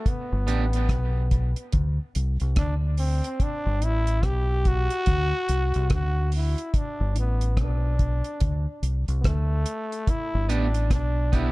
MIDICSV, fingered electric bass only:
0, 0, Header, 1, 2, 480
1, 0, Start_track
1, 0, Key_signature, 1, "major"
1, 0, Tempo, 834492
1, 31, Time_signature, 4, 2, 24, 8
1, 6626, End_track
2, 0, Start_track
2, 0, Title_t, "Fingered electric bass"
2, 0, Program_c, 0, 33
2, 187, Note_on_c, 0, 31, 93
2, 279, Note_off_c, 0, 31, 0
2, 279, Note_on_c, 0, 33, 93
2, 503, Note_off_c, 0, 33, 0
2, 514, Note_on_c, 0, 35, 89
2, 881, Note_off_c, 0, 35, 0
2, 1000, Note_on_c, 0, 38, 108
2, 1137, Note_off_c, 0, 38, 0
2, 1241, Note_on_c, 0, 36, 85
2, 1378, Note_off_c, 0, 36, 0
2, 1388, Note_on_c, 0, 36, 87
2, 1472, Note_off_c, 0, 36, 0
2, 1477, Note_on_c, 0, 38, 86
2, 1843, Note_off_c, 0, 38, 0
2, 2107, Note_on_c, 0, 31, 94
2, 2199, Note_off_c, 0, 31, 0
2, 2199, Note_on_c, 0, 33, 99
2, 2424, Note_off_c, 0, 33, 0
2, 2436, Note_on_c, 0, 35, 88
2, 2802, Note_off_c, 0, 35, 0
2, 2919, Note_on_c, 0, 38, 104
2, 3057, Note_off_c, 0, 38, 0
2, 3159, Note_on_c, 0, 36, 83
2, 3297, Note_off_c, 0, 36, 0
2, 3312, Note_on_c, 0, 36, 83
2, 3393, Note_off_c, 0, 36, 0
2, 3396, Note_on_c, 0, 38, 87
2, 3763, Note_off_c, 0, 38, 0
2, 4030, Note_on_c, 0, 31, 86
2, 4121, Note_off_c, 0, 31, 0
2, 4121, Note_on_c, 0, 33, 84
2, 4345, Note_off_c, 0, 33, 0
2, 4355, Note_on_c, 0, 35, 87
2, 4722, Note_off_c, 0, 35, 0
2, 4840, Note_on_c, 0, 38, 110
2, 4978, Note_off_c, 0, 38, 0
2, 5076, Note_on_c, 0, 36, 79
2, 5216, Note_off_c, 0, 36, 0
2, 5224, Note_on_c, 0, 36, 84
2, 5310, Note_off_c, 0, 36, 0
2, 5318, Note_on_c, 0, 38, 86
2, 5544, Note_off_c, 0, 38, 0
2, 5951, Note_on_c, 0, 31, 95
2, 6039, Note_off_c, 0, 31, 0
2, 6039, Note_on_c, 0, 33, 94
2, 6264, Note_off_c, 0, 33, 0
2, 6273, Note_on_c, 0, 35, 82
2, 6626, Note_off_c, 0, 35, 0
2, 6626, End_track
0, 0, End_of_file